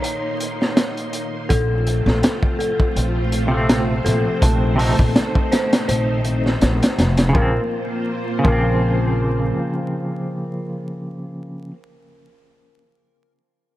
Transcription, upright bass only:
1.50 2.02 A#1 loud
2.06 2.21 A#1 loud
2.96 4.02 A#1 medium
4.06 4.23 A#1 medium
4.42 4.95 A#1 loud
4.99 5.13 A#1 loud
5.89 6.58 A#1 medium
6.62 6.79 A#1 loud
6.98 7.31 F1 loud
7.35 7.56 A#1 loud
8.45 9.50 A#1 medium

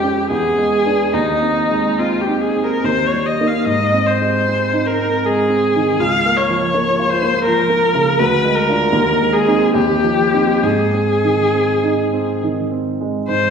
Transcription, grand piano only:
0.00 0.27 F2 soft
0.00 0.33 G#3 soft
0.00 0.04 C#4 soft
0.00 0.31 C#4 soft
0.30 1.10 E2 soft
0.58 1.02 G#3 soft
0.85 1.10 B3 soft
0.85 1.10 D4 soft
1.13 2.80 D#2 soft
1.42 1.87 C4 soft
1.71 2.16 G#3 soft
1.99 2.45 C4 soft
2.27 2.73 D#4 soft
2.55 2.84 C4 soft
2.84 3.63 D#2 soft
3.13 3.56 G3 soft
3.40 3.64 A#3 soft
3.40 3.64 D#4 soft
3.66 5.95 G#2 soft
3.93 4.36 C4 soft
4.21 4.63 G#3 soft
4.48 4.89 C4 soft
4.73 5.15 D#4 soft
4.99 5.40 C4 soft
5.24 5.65 G#3 soft
5.49 5.89 C4 soft
5.75 6.00 D#3 soft
5.99 8.15 C#2 soft
6.26 6.64 A#3 soft
6.49 6.88 F3 soft
6.74 7.13 A#3 soft
6.99 7.37 F4 soft
7.22 7.60 A#3 soft
7.46 7.85 F3 soft
7.70 8.09 A#3 soft
7.95 8.19 C#3 soft
8.20 8.92 D2 soft
8.44 8.84 G#3 soft
8.69 8.91 D4 soft
8.69 8.92 F4 soft
8.92 9.73 D#2 soft
9.21 9.65 G#3 soft
9.47 9.72 C4 soft
9.47 9.73 D#4 soft
9.74 10.60 D#2 soft
10.03 10.50 F3 soft
10.33 10.60 C4 soft
10.33 10.60 D#4 soft
10.62 13.24 G#2 soft
10.93 11.42 C4 soft
11.24 11.72 D#3 soft
11.54 12.02 C4 soft
11.83 12.31 D#4 soft
12.13 12.60 C4 soft
12.43 12.90 D#3 soft
12.71 13.17 C4 soft
13.01 13.28 G#3 soft
13.29 13.50 G#2 soft

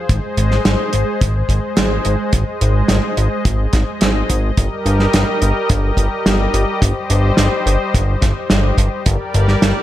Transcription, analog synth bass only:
0.09 0.20 G#1 loud
0.37 0.59 G#1 loud
0.65 0.76 G#1 medium
0.93 1.04 G#1 medium
1.21 1.43 G#1 medium
1.49 1.60 G#1 medium
1.77 1.99 G#1 medium
2.05 2.16 G#1 medium
2.33 2.44 G#1 medium
2.61 2.83 G#1 medium
2.89 3.00 G#1 medium
3.17 3.28 G#1 medium
3.45 3.67 G#1 medium
3.73 3.84 G#1 loud
4.01 4.23 G#1 medium
4.30 4.51 G#1 loud
4.58 4.68 G1 loud
4.86 5.07 G1 loud
5.14 5.25 G1 medium
5.42 5.52 G1 medium
5.70 5.91 G1 medium
5.97 6.08 G1 medium
6.26 6.47 G1 medium
6.54 6.65 G1 medium
6.82 6.93 G1 loud
7.10 7.32 G1 loud
7.38 7.49 G1 medium
7.66 7.77 G1 medium
7.95 8.16 G1 medium
8.22 8.33 G1 medium
8.50 8.72 G1 medium
8.78 8.89 G1 medium
9.06 9.17 G1 medium
9.34 9.56 G1 loud
9.62 9.73 G1 medium

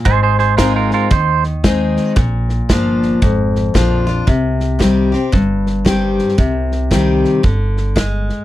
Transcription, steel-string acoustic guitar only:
0.05 1.07 G#2 medium
0.58 1.09 G#3 medium
0.58 1.09 C4 medium
0.58 1.09 D#4 medium
0.58 1.10 G#4 medium
1.11 2.12 D#3 medium
1.64 2.14 G#3 soft
1.64 2.15 C4 medium
1.64 2.15 D#4 medium
1.64 2.15 G#4 medium
2.16 3.18 A#2 medium
2.69 3.20 F3 medium
2.69 3.20 A#3 medium
2.69 3.20 D4 medium
2.69 3.21 F4 medium
3.22 4.23 F2 medium
3.74 4.05 F3 medium
3.74 4.06 A#3 medium
3.74 4.06 D4 medium
3.74 4.06 F4 medium
4.07 4.27 D4 soft
4.07 4.26 F4 medium
4.27 5.28 C3 medium
4.79 5.10 D#3 medium
4.79 5.11 G3 medium
4.79 5.11 C4 medium
4.79 5.11 G4 medium
5.12 5.33 C4 soft
5.12 5.32 G4 soft
5.32 6.34 G2 medium
5.85 6.36 D#3 medium
5.85 6.36 G3 medium
5.85 6.36 C4 medium
5.85 6.36 G4 medium
6.38 7.39 C3 medium
6.91 7.41 D#3 medium
6.91 7.42 G3 medium
6.91 7.42 C4 medium
6.91 7.42 G4 medium
7.43 7.94 D3 medium
7.96 8.45 G#3 medium

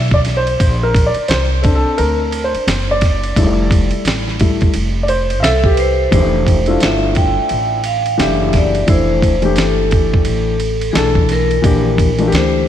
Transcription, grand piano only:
0.00 0.16 E5 medium
0.14 0.19 D5 medium
0.37 0.85 C5 medium
0.83 1.07 A#4 medium
1.06 1.28 D5 medium
1.28 1.76 C5 medium
1.62 3.32 C4 medium
1.62 3.32 D4 medium
1.62 1.74 A4 medium
1.75 1.99 A4 medium
1.98 2.41 A#4 medium
2.44 2.92 C5 medium
2.91 3.90 D5 medium
3.36 4.36 G3 medium
3.36 4.36 A3 medium
3.36 4.36 E4 medium
4.40 4.71 G3 medium
4.40 4.71 A3 soft
4.40 4.71 E4 medium
5.03 5.09 D5 medium
5.09 5.40 C5 medium
5.40 5.67 E5 loud
5.40 5.44 F5 medium
5.65 6.08 G4 medium
6.11 6.55 E3 medium
6.11 6.55 A3 medium
6.11 6.56 D4 medium
6.11 6.56 G4 medium
6.67 7.77 A3 medium
6.67 7.77 D4 medium
6.67 7.77 E4 medium
6.67 7.78 F4 medium
8.18 8.77 E3 medium
8.18 8.77 A3 medium
8.18 8.78 D4 medium
8.18 8.78 G4 medium
8.87 9.30 E3 medium
8.87 9.31 A3 medium
8.87 9.32 D4 medium
8.87 9.32 E4 medium
9.42 10.52 E3 medium
9.42 10.52 A3 medium
9.42 10.53 D4 medium
9.42 10.53 G4 medium
10.93 11.52 E3 medium
10.93 11.53 A3 medium
10.93 11.53 D4 medium
10.93 11.54 A4 medium
11.62 12.06 E3 medium
11.62 12.06 A#3 medium
11.62 12.07 D4 medium
11.62 12.07 G4 medium
12.18 12.68 E3 medium
12.18 12.68 A3 medium
12.18 12.68 D4 medium
12.18 12.26 F4 medium
12.28 12.68 G4 medium

